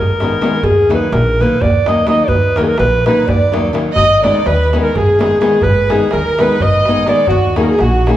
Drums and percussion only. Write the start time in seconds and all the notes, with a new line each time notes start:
0.20 darbuka tek
0.42 darbuka tek
0.63 darbuka dum
0.91 darbuka tek
1.13 darbuka tek
1.27 darbuka tek
1.62 darbuka dum
1.74 darbuka tek
1.86 darbuka tek
2.07 darbuka tek
2.28 darbuka dum
2.42 darbuka tek
2.56 darbuka tek
2.68 darbuka tek
2.78 darbuka tek
2.92 darbuka tek
3.06 darbuka tek
3.17 darbuka tek
3.28 darbuka dum
3.41 darbuka tek
3.54 darbuka tek
3.66 darbuka tek
3.75 darbuka tek
3.96 darbuka dum
4.24 darbuka tek
4.46 darbuka tek
4.59 darbuka tek
4.73 darbuka tek
4.95 darbuka dum
5.09 darbuka tek
5.21 darbuka tek
5.42 darbuka tek
5.61 darbuka dum
5.90 darbuka tek
6.11 darbuka tek
6.25 darbuka tek
6.39 darbuka tek
6.60 darbuka dum
6.74 darbuka tek
6.85 darbuka tek
7.06 darbuka tek
7.27 darbuka dum
7.56 darbuka tek
7.79 darbuka tek
7.93 darbuka tek
8.07 darbuka tek